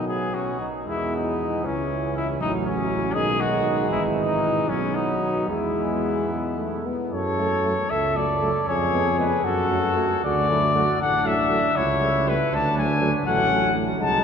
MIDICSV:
0, 0, Header, 1, 6, 480
1, 0, Start_track
1, 0, Key_signature, 4, "major"
1, 0, Tempo, 524017
1, 800, Time_signature, 6, 3, 24, 8
1, 1747, Tempo, 502934
1, 4147, Tempo, 538600
1, 6547, Tempo, 519931
1, 6548, Key_signature, 3, "minor"
1, 9907, Tempo, 499584
1, 13255, End_track
2, 0, Start_track
2, 0, Title_t, "Trumpet"
2, 0, Program_c, 0, 56
2, 73, Note_on_c, 0, 68, 54
2, 313, Note_on_c, 0, 66, 43
2, 327, Note_off_c, 0, 68, 0
2, 631, Note_off_c, 0, 66, 0
2, 811, Note_on_c, 0, 64, 57
2, 1029, Note_off_c, 0, 64, 0
2, 1057, Note_on_c, 0, 63, 55
2, 1521, Note_on_c, 0, 61, 55
2, 1535, Note_off_c, 0, 63, 0
2, 1981, Note_off_c, 0, 61, 0
2, 1987, Note_on_c, 0, 64, 56
2, 2098, Note_off_c, 0, 64, 0
2, 2224, Note_on_c, 0, 63, 65
2, 2334, Note_off_c, 0, 63, 0
2, 2448, Note_on_c, 0, 61, 66
2, 2920, Note_on_c, 0, 68, 79
2, 2935, Note_off_c, 0, 61, 0
2, 3175, Note_on_c, 0, 66, 64
2, 3189, Note_off_c, 0, 68, 0
2, 3650, Note_off_c, 0, 66, 0
2, 3656, Note_on_c, 0, 64, 65
2, 3766, Note_off_c, 0, 64, 0
2, 3917, Note_on_c, 0, 63, 62
2, 4382, Note_on_c, 0, 61, 65
2, 4395, Note_off_c, 0, 63, 0
2, 4616, Note_on_c, 0, 63, 56
2, 4630, Note_off_c, 0, 61, 0
2, 5091, Note_off_c, 0, 63, 0
2, 5096, Note_on_c, 0, 64, 51
2, 6287, Note_off_c, 0, 64, 0
2, 6554, Note_on_c, 0, 73, 69
2, 7272, Note_on_c, 0, 76, 72
2, 7286, Note_off_c, 0, 73, 0
2, 7515, Note_on_c, 0, 74, 57
2, 7529, Note_off_c, 0, 76, 0
2, 7985, Note_off_c, 0, 74, 0
2, 7990, Note_on_c, 0, 73, 73
2, 8446, Note_off_c, 0, 73, 0
2, 8463, Note_on_c, 0, 71, 57
2, 8689, Note_off_c, 0, 71, 0
2, 8700, Note_on_c, 0, 69, 71
2, 9420, Note_off_c, 0, 69, 0
2, 9434, Note_on_c, 0, 74, 74
2, 10138, Note_off_c, 0, 74, 0
2, 10156, Note_on_c, 0, 78, 76
2, 10395, Note_on_c, 0, 76, 76
2, 10410, Note_off_c, 0, 78, 0
2, 10877, Note_on_c, 0, 73, 78
2, 10891, Note_off_c, 0, 76, 0
2, 11380, Note_on_c, 0, 71, 69
2, 11394, Note_off_c, 0, 73, 0
2, 11626, Note_on_c, 0, 81, 83
2, 11640, Note_off_c, 0, 71, 0
2, 11847, Note_off_c, 0, 81, 0
2, 11852, Note_on_c, 0, 80, 70
2, 12185, Note_off_c, 0, 80, 0
2, 12323, Note_on_c, 0, 78, 88
2, 12772, Note_off_c, 0, 78, 0
2, 13043, Note_on_c, 0, 81, 88
2, 13255, Note_off_c, 0, 81, 0
2, 13255, End_track
3, 0, Start_track
3, 0, Title_t, "Flugelhorn"
3, 0, Program_c, 1, 56
3, 73, Note_on_c, 1, 59, 36
3, 311, Note_on_c, 1, 61, 41
3, 325, Note_off_c, 1, 59, 0
3, 548, Note_off_c, 1, 61, 0
3, 554, Note_on_c, 1, 63, 37
3, 784, Note_off_c, 1, 63, 0
3, 789, Note_on_c, 1, 59, 35
3, 1509, Note_on_c, 1, 61, 39
3, 1523, Note_off_c, 1, 59, 0
3, 2231, Note_off_c, 1, 61, 0
3, 2236, Note_on_c, 1, 61, 42
3, 2938, Note_on_c, 1, 63, 54
3, 2953, Note_off_c, 1, 61, 0
3, 4229, Note_off_c, 1, 63, 0
3, 4380, Note_on_c, 1, 59, 44
3, 5080, Note_off_c, 1, 59, 0
3, 5106, Note_on_c, 1, 59, 37
3, 6292, Note_off_c, 1, 59, 0
3, 6548, Note_on_c, 1, 69, 50
3, 7235, Note_off_c, 1, 69, 0
3, 7278, Note_on_c, 1, 69, 54
3, 7973, Note_off_c, 1, 69, 0
3, 7998, Note_on_c, 1, 68, 55
3, 8698, Note_on_c, 1, 66, 61
3, 8712, Note_off_c, 1, 68, 0
3, 9434, Note_off_c, 1, 66, 0
3, 9444, Note_on_c, 1, 66, 57
3, 9672, Note_off_c, 1, 66, 0
3, 9677, Note_on_c, 1, 64, 51
3, 9900, Note_off_c, 1, 64, 0
3, 9906, Note_on_c, 1, 66, 55
3, 10143, Note_off_c, 1, 66, 0
3, 10148, Note_on_c, 1, 62, 57
3, 10867, Note_on_c, 1, 64, 58
3, 10881, Note_off_c, 1, 62, 0
3, 11596, Note_off_c, 1, 64, 0
3, 11601, Note_on_c, 1, 62, 56
3, 12300, Note_off_c, 1, 62, 0
3, 12321, Note_on_c, 1, 61, 59
3, 12771, Note_off_c, 1, 61, 0
3, 13021, Note_on_c, 1, 63, 63
3, 13255, Note_off_c, 1, 63, 0
3, 13255, End_track
4, 0, Start_track
4, 0, Title_t, "French horn"
4, 0, Program_c, 2, 60
4, 0, Note_on_c, 2, 54, 33
4, 532, Note_off_c, 2, 54, 0
4, 794, Note_on_c, 2, 56, 33
4, 1510, Note_on_c, 2, 52, 37
4, 1523, Note_off_c, 2, 56, 0
4, 2226, Note_off_c, 2, 52, 0
4, 2232, Note_on_c, 2, 54, 47
4, 2937, Note_on_c, 2, 51, 48
4, 2951, Note_off_c, 2, 54, 0
4, 3651, Note_on_c, 2, 52, 47
4, 3665, Note_off_c, 2, 51, 0
4, 4378, Note_on_c, 2, 54, 44
4, 4391, Note_off_c, 2, 52, 0
4, 5092, Note_off_c, 2, 54, 0
4, 5097, Note_on_c, 2, 56, 36
4, 5763, Note_off_c, 2, 56, 0
4, 5834, Note_on_c, 2, 56, 36
4, 6070, Note_on_c, 2, 57, 37
4, 6083, Note_off_c, 2, 56, 0
4, 6319, Note_on_c, 2, 59, 42
4, 6332, Note_off_c, 2, 57, 0
4, 6552, Note_off_c, 2, 59, 0
4, 6800, Note_on_c, 2, 57, 34
4, 6885, Note_off_c, 2, 57, 0
4, 7029, Note_on_c, 2, 57, 37
4, 7117, Note_off_c, 2, 57, 0
4, 7518, Note_on_c, 2, 57, 40
4, 7601, Note_off_c, 2, 57, 0
4, 7753, Note_on_c, 2, 57, 43
4, 7837, Note_off_c, 2, 57, 0
4, 8216, Note_on_c, 2, 59, 41
4, 8300, Note_off_c, 2, 59, 0
4, 8453, Note_on_c, 2, 59, 38
4, 8538, Note_off_c, 2, 59, 0
4, 8935, Note_on_c, 2, 57, 37
4, 9025, Note_off_c, 2, 57, 0
4, 9177, Note_on_c, 2, 57, 48
4, 9268, Note_off_c, 2, 57, 0
4, 9668, Note_on_c, 2, 57, 43
4, 9754, Note_off_c, 2, 57, 0
4, 9899, Note_on_c, 2, 57, 44
4, 9988, Note_off_c, 2, 57, 0
4, 10389, Note_on_c, 2, 57, 45
4, 10477, Note_off_c, 2, 57, 0
4, 10625, Note_on_c, 2, 57, 47
4, 10714, Note_off_c, 2, 57, 0
4, 11124, Note_on_c, 2, 57, 46
4, 11211, Note_off_c, 2, 57, 0
4, 11365, Note_on_c, 2, 57, 44
4, 11451, Note_off_c, 2, 57, 0
4, 11840, Note_on_c, 2, 57, 48
4, 11926, Note_off_c, 2, 57, 0
4, 12075, Note_on_c, 2, 57, 48
4, 12161, Note_off_c, 2, 57, 0
4, 12317, Note_on_c, 2, 57, 45
4, 12548, Note_off_c, 2, 57, 0
4, 12558, Note_on_c, 2, 57, 44
4, 12784, Note_off_c, 2, 57, 0
4, 12790, Note_on_c, 2, 57, 43
4, 13023, Note_off_c, 2, 57, 0
4, 13033, Note_on_c, 2, 56, 47
4, 13255, Note_off_c, 2, 56, 0
4, 13255, End_track
5, 0, Start_track
5, 0, Title_t, "Trombone"
5, 0, Program_c, 3, 57
5, 0, Note_on_c, 3, 51, 38
5, 431, Note_off_c, 3, 51, 0
5, 1501, Note_on_c, 3, 52, 45
5, 2219, Note_on_c, 3, 54, 57
5, 2234, Note_off_c, 3, 52, 0
5, 2921, Note_off_c, 3, 54, 0
5, 2927, Note_on_c, 3, 56, 64
5, 4379, Note_on_c, 3, 54, 48
5, 4393, Note_off_c, 3, 56, 0
5, 5091, Note_on_c, 3, 56, 44
5, 5104, Note_off_c, 3, 54, 0
5, 6187, Note_off_c, 3, 56, 0
5, 6792, Note_on_c, 3, 54, 32
5, 6878, Note_off_c, 3, 54, 0
5, 7037, Note_on_c, 3, 54, 42
5, 7122, Note_off_c, 3, 54, 0
5, 7503, Note_on_c, 3, 54, 37
5, 7590, Note_off_c, 3, 54, 0
5, 7750, Note_on_c, 3, 54, 43
5, 7835, Note_off_c, 3, 54, 0
5, 8218, Note_on_c, 3, 56, 35
5, 8302, Note_off_c, 3, 56, 0
5, 8451, Note_on_c, 3, 56, 43
5, 8536, Note_off_c, 3, 56, 0
5, 8928, Note_on_c, 3, 54, 43
5, 9019, Note_off_c, 3, 54, 0
5, 9167, Note_on_c, 3, 54, 42
5, 9260, Note_off_c, 3, 54, 0
5, 9661, Note_on_c, 3, 54, 40
5, 9748, Note_off_c, 3, 54, 0
5, 9895, Note_on_c, 3, 54, 47
5, 9985, Note_off_c, 3, 54, 0
5, 10374, Note_on_c, 3, 54, 45
5, 10465, Note_off_c, 3, 54, 0
5, 10618, Note_on_c, 3, 54, 44
5, 10709, Note_off_c, 3, 54, 0
5, 11106, Note_on_c, 3, 55, 41
5, 11196, Note_off_c, 3, 55, 0
5, 11346, Note_on_c, 3, 55, 50
5, 11436, Note_off_c, 3, 55, 0
5, 11820, Note_on_c, 3, 54, 44
5, 11910, Note_off_c, 3, 54, 0
5, 12060, Note_on_c, 3, 54, 48
5, 12150, Note_off_c, 3, 54, 0
5, 12301, Note_on_c, 3, 54, 54
5, 12534, Note_off_c, 3, 54, 0
5, 12540, Note_on_c, 3, 54, 47
5, 12778, Note_off_c, 3, 54, 0
5, 12782, Note_on_c, 3, 54, 46
5, 13013, Note_off_c, 3, 54, 0
5, 13019, Note_on_c, 3, 54, 54
5, 13252, Note_off_c, 3, 54, 0
5, 13255, End_track
6, 0, Start_track
6, 0, Title_t, "Bass trombone"
6, 0, Program_c, 4, 57
6, 0, Note_on_c, 4, 35, 40
6, 529, Note_off_c, 4, 35, 0
6, 797, Note_on_c, 4, 40, 45
6, 1475, Note_off_c, 4, 40, 0
6, 1507, Note_on_c, 4, 37, 43
6, 2224, Note_on_c, 4, 33, 54
6, 2239, Note_off_c, 4, 37, 0
6, 2932, Note_on_c, 4, 35, 52
6, 2947, Note_off_c, 4, 33, 0
6, 3647, Note_off_c, 4, 35, 0
6, 3653, Note_on_c, 4, 32, 55
6, 4373, Note_on_c, 4, 35, 43
6, 4386, Note_off_c, 4, 32, 0
6, 5086, Note_off_c, 4, 35, 0
6, 5091, Note_on_c, 4, 40, 41
6, 6285, Note_off_c, 4, 40, 0
6, 6547, Note_on_c, 4, 42, 55
6, 7151, Note_off_c, 4, 42, 0
6, 7274, Note_on_c, 4, 37, 45
6, 7866, Note_off_c, 4, 37, 0
6, 7985, Note_on_c, 4, 41, 57
6, 8570, Note_off_c, 4, 41, 0
6, 8693, Note_on_c, 4, 42, 50
6, 9309, Note_off_c, 4, 42, 0
6, 9430, Note_on_c, 4, 38, 63
6, 10028, Note_off_c, 4, 38, 0
6, 10147, Note_on_c, 4, 33, 54
6, 10752, Note_off_c, 4, 33, 0
6, 10874, Note_on_c, 4, 37, 69
6, 11482, Note_off_c, 4, 37, 0
6, 11597, Note_on_c, 4, 38, 58
6, 12193, Note_off_c, 4, 38, 0
6, 12307, Note_on_c, 4, 33, 67
6, 12939, Note_off_c, 4, 33, 0
6, 13021, Note_on_c, 4, 36, 52
6, 13255, Note_off_c, 4, 36, 0
6, 13255, End_track
0, 0, End_of_file